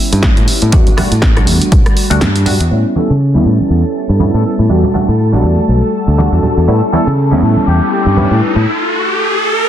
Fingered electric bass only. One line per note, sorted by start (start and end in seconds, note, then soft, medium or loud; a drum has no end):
0.13 0.33 G2 medium
0.37 0.46 A2 loud
0.62 0.71 A2 loud
1.12 1.38 A2 medium
1.36 1.45 B1 medium
1.47 1.59 E2 loud
1.72 1.84 B1 medium
2.11 2.21 D2 medium
2.21 2.57 G2 medium
2.60 2.69 E2 medium
2.71 2.83 A2 medium
3.10 3.36 C#3 medium
3.35 3.44 E2 medium
3.46 3.58 A2 medium
3.70 3.82 E2 medium
4.09 4.30 G2 medium
4.34 4.43 A2 medium
4.59 4.68 A2 medium
4.70 4.81 E2 medium
5.08 5.35 A2 medium
5.33 5.42 B1 medium
5.44 5.56 E2 medium
5.69 5.81 B1 medium
6.08 6.28 D2 medium
6.32 6.41 E2 loud
6.43 muted fingered electric bass stroke soft
6.57 6.66 E2 medium
6.68 6.80 A2 medium
7.07 7.33 C#3 medium
7.32 7.41 E2 medium
7.42 7.54 A2 loud
7.67 7.79 E2 medium
8.06 8.26 G2 medium
8.31 8.40 A2 loud
8.56 8.65 A2 medium